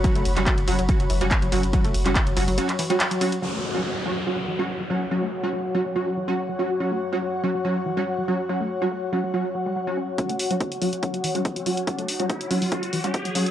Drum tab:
RD |xxxxxxxxxxxxxxxx|xxxxxxxxxxxxxxxx|----------------|----------------|
HH |xxoxxxoxxxoxxxox|xxoxxxooxxoxxxox|----------------|----------------|
CP |---xx-------x---|---xx----x--x---|----------------|----------------|
BD |o---o---o---o---|o---o-----------|----------------|----------------|

RD |----------------|----------------|----------------|----------------|
HH |----------------|----------------|xxoxxxoxxxoxxxox|xxoxxxooxxoxxxox|
CP |----------------|----------------|----------------|----------------|
BD |----------------|----------------|o---o---o---o---|o---o---o---o---|